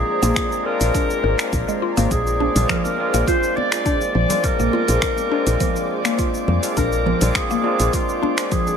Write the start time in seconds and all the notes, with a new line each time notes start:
Already playing: G#3 A#3 C4 D4 F4 G#4 C5 D5 A#5
0.21 A#1 G#3 A#3 C4 D4 F4, open hi-hat, cabasa
0.36 F4, finger snap, kick, open hi-hat, cabasa
0.52 cabasa
0.63 G#3 A#3 C4 D4 A#4
0.67 F4
0.81 A#1, open hi-hat, cabasa
0.95 D4, kick, open hi-hat, cabasa
1.10 cabasa
1.24 G#1 A#4
1.38 G#3 A#3 C4 D4 F4, finger snap, open hi-hat, cabasa
1.53 A#1, kick, open hi-hat, cabasa
1.68 G#3, cabasa
1.82 F4
1.97 G#1 G#3 A#3 C4 D4 F4, open hi-hat, cabasa
2.11 A#1 G#4 D6, kick, open hi-hat, cabasa
2.27 cabasa
2.40 D4, high conga
2.55 A#1 G#3 A#3 C4 D4 F4, open hi-hat, low conga, cabasa
2.69 F3 A#4, finger snap, kick, open hi-hat, high bongo, cabasa
2.77 G#4
2.84 A#4, high bongo, high conga, cabasa
2.96 G#3 A#3 C4 D4
3.00 F4
3.14 A#1 A#3, open hi-hat, cabasa
3.27 F4 C5, kick, open hi-hat, cabasa
3.43 cabasa
3.57 D5, high bongo, high conga
3.71 G#3 A#3 C4 D4 F4, finger snap, open hi-hat, cabasa
3.86 D4, kick, open hi-hat, cabasa
4.01 high bongo, cabasa
4.15 A#1 F3 D5
4.29 G#3 A#3 C4 D4 F4, open hi-hat, high conga, low conga, cabasa
4.44 A#4, kick, open hi-hat, cabasa
4.60 A#1 A#3, cabasa
4.73 F4, high bongo, high conga
4.87 A#1 G#3 A#3 C4 D4 F4, open hi-hat, cabasa
5.02 finger snap, kick, open hi-hat, high bongo, cabasa
5.17 high bongo, high conga, cabasa
5.29 G#3 A#3 C4 D4
5.33 F4
5.47 A#1, open hi-hat, cabasa
5.60 F3, kick, open hi-hat, high conga, cabasa
5.76 cabasa
6.04 G#3 A#3 C4 D4 F4, finger snap, open hi-hat, cabasa
6.19 F4, kick, open hi-hat, cabasa
6.34 cabasa
6.48 F2, low conga
6.62 G#3 A#3 C4 D4 F4, open hi-hat, cabasa
6.77 A#1 D4 A#4, kick, open hi-hat, cabasa
6.92 cabasa
7.06 F3, high conga
7.20 A#1 G#3 A#3 C4 D4 F4, open hi-hat, low conga, cabasa
7.35 G#4, finger snap, kick, open hi-hat, high bongo, cabasa
7.50 A#3, high bongo, high conga, cabasa
7.62 G#3 A#3 C4 D4 F4
7.66 F4
7.80 A#1, open hi-hat, cabasa
7.93 F4, kick, open hi-hat, cabasa
8.09 cabasa
8.22 D4, high bongo, high conga
8.37 G#3 A#3 C4 D4 F4, finger snap, open hi-hat, cabasa
8.52 F3 G#4, kick, open hi-hat, cabasa
8.67 high bongo, cabasa